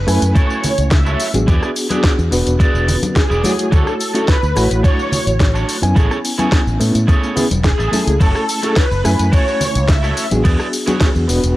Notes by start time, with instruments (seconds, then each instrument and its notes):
Already playing: analog synth lead B4
0.07 fingered electric bass F#2, reed electric piano A3 C#4 E4 G#5, muted clean electric guitar stroke, cross-stick, open hi-hat, tambourine, cabasa
0.22 fingered electric bass F#2, closed hi-hat, tambourine, cabasa
0.35 clean electric guitar E4 F#4 A4 C#5, analog synth lead C#5, kick, closed hi-hat, tambourine, cabasa
0.50 tambourine
0.64 open hi-hat, tambourine, low conga, cabasa
0.78 fingered electric bass C#2, closed hi-hat, tambourine, cabasa
0.91 analog synth lead E5, kick, snare, closed hi-hat, tambourine, cabasa
1.05 clean electric guitar E4 F#4 A4 C#5, tambourine
1.20 open hi-hat, tambourine, cabasa
1.34 fingered electric bass A1, reed electric piano B3 D4 F#4 G#4, closed hi-hat, tambourine, high conga, cabasa
1.47 fingered electric bass E2, clean electric guitar E4 G#4 B4 D5, kick, closed hi-hat, tambourine, cabasa
1.62 cross-stick, tambourine
1.76 open hi-hat, tambourine, cabasa
1.89 reed electric piano B3 D4 F#4 G#4, clean electric guitar E4 G#4 B4 D5, closed hi-hat, tambourine, high conga, cabasa
2.03 kick, cross-stick, snare, closed hi-hat, tambourine, cabasa
2.18 fingered electric bass E2, tambourine, cabasa
2.31 fingered electric bass E1, reed electric piano B3 D4 F#4 B4, muted clean electric guitar stroke, open hi-hat, tambourine, cabasa
2.47 fingered electric bass E1, closed hi-hat, tambourine, cabasa
2.59 clean electric guitar E4 G#4 B4 D5, kick, closed hi-hat, tambourine, cabasa
2.74 fingered electric bass E1, tambourine
2.88 open hi-hat, tambourine, low conga, cabasa
3.02 closed hi-hat, tambourine, high conga, cabasa
3.16 analog synth lead G#4, kick, snare, closed hi-hat, tambourine, cabasa
3.29 fingered electric bass E1, clean electric guitar E4 G#4 B4 D5, tambourine
3.43 reed electric piano A3 E4 F#4 C#5, open hi-hat, tambourine, high conga, cabasa
3.59 closed hi-hat, tambourine, cabasa
3.71 fingered electric bass D2, clean electric guitar D4 F#4 A4 C#5, analog synth lead A4, kick, closed hi-hat, tambourine, cabasa
3.87 cross-stick, tambourine
4.00 open hi-hat, tambourine, cabasa
4.13 reed electric piano A3 C#4 E4 F#4, clean electric guitar D4 F#4 A4 C#5, closed hi-hat, tambourine, cabasa
4.27 analog synth lead B4, kick, snare, closed hi-hat, tambourine, cabasa
4.42 fingered electric bass D2, tambourine, cabasa
4.55 fingered electric bass A1, reed electric piano A3 E4 F#4 C#5, muted clean electric guitar stroke, cross-stick, open hi-hat, tambourine, cabasa
4.71 fingered electric bass A1, closed hi-hat, tambourine, cabasa
4.83 clean electric guitar D4 F#4 A4 C#5, analog synth lead C#5, kick, closed hi-hat, tambourine, cabasa
4.99 tambourine
5.12 open hi-hat, tambourine, low conga, cabasa
5.27 fingered electric bass A1, closed hi-hat, tambourine, cabasa
5.40 kick, snare, closed hi-hat, tambourine, cabasa
5.54 clean electric guitar D4 F#4 A4 C#5, tambourine
5.69 open hi-hat, tambourine, cabasa
5.82 fingered electric bass F#2, reed electric piano B3 C#4 E4 G#5, closed hi-hat, tambourine, high conga, cabasa
5.95 fingered electric bass A1, clean electric guitar E4 G#4 A4 C#5, kick, closed hi-hat, tambourine, cabasa
6.11 cross-stick, tambourine
6.25 open hi-hat, tambourine, cabasa
6.38 reed electric piano B3 C#4 E4 G#5, clean electric guitar E4 G#4 A4 C#5, closed hi-hat, tambourine, high conga, cabasa
6.52 kick, cross-stick, snare, closed hi-hat, tambourine, cabasa
6.67 fingered electric bass A1, tambourine, cabasa
6.79 fingered electric bass A2, reed electric piano A3 B3 C#4 E4, muted clean electric guitar stroke, open hi-hat, tambourine, cabasa
6.94 fingered electric bass A2, closed hi-hat, tambourine, cabasa
7.07 clean electric guitar E4 G#4 A4 C#5, kick, closed hi-hat, tambourine, cabasa
7.24 tambourine
7.36 reed electric piano B3 C#4 E4 G#4, open hi-hat, tambourine, low conga, cabasa
7.51 fingered electric bass E1, closed hi-hat, tambourine, high conga, cabasa
7.64 analog synth lead G#4, kick, snare, closed hi-hat, tambourine, cabasa
7.78 fingered electric bass A1, clean electric guitar E4 G#4 A4 E5, tambourine
7.92 reed electric piano A3 C#4 E4 A4, muted fingered electric bass stroke, open hi-hat, tambourine, high conga, cabasa
8.07 fingered electric bass C#2, closed hi-hat, tambourine, cabasa
8.20 fingered electric bass F#1, clean electric guitar E4 F#4 A4 C#5, analog synth lead A4, kick, closed hi-hat, ride, tambourine, cabasa
8.35 cross-stick, tambourine
8.49 open hi-hat, tambourine, cabasa
8.62 reed electric piano A3 C#4 E4 G#4, clean electric guitar E4 F#4 A4 C#5, closed hi-hat, tambourine, cabasa
8.76 analog synth lead B4, kick, snare, closed hi-hat, ride, tambourine, cabasa
8.91 fingered electric bass F#1, tambourine, cabasa
9.04 fingered electric bass F#2, reed electric piano A3 C#4 E4 G#5, muted clean electric guitar stroke, cross-stick, open hi-hat, tambourine, cabasa
9.19 fingered electric bass F#2, closed hi-hat, tambourine, cabasa
9.32 clean electric guitar E4 F#4 A4 C#5, analog synth lead C#5, kick, closed hi-hat, ride, tambourine, cabasa
9.48 tambourine
9.61 open hi-hat, tambourine, low conga, cabasa
9.75 fingered electric bass C#2, closed hi-hat, tambourine, cabasa
9.88 analog synth lead E5, kick, snare, closed hi-hat, ride, tambourine, cabasa
10.02 clean electric guitar E4 F#4 A4 C#5, tambourine
10.17 open hi-hat, tambourine, cabasa
10.31 fingered electric bass A1, reed electric piano B3 D4 F#4 G#4, closed hi-hat, tambourine, high conga, cabasa
10.44 fingered electric bass E2, clean electric guitar E4 G#4 B4 D5, kick, closed hi-hat, ride, tambourine, cabasa
10.60 cross-stick, tambourine
10.73 open hi-hat, tambourine, cabasa
10.86 reed electric piano B3 D4 F#4 G#4, clean electric guitar E4 G#4 B4 C#5, closed hi-hat, tambourine, high conga, cabasa
11.00 kick, cross-stick, snare, closed hi-hat, ride, tambourine, cabasa
11.15 fingered electric bass E2, tambourine, cabasa
11.28 fingered electric bass E1, reed electric piano B3 D4 F#4 B4, muted clean electric guitar stroke, open hi-hat, tambourine, cabasa
11.44 fingered electric bass E1, closed hi-hat, tambourine, cabasa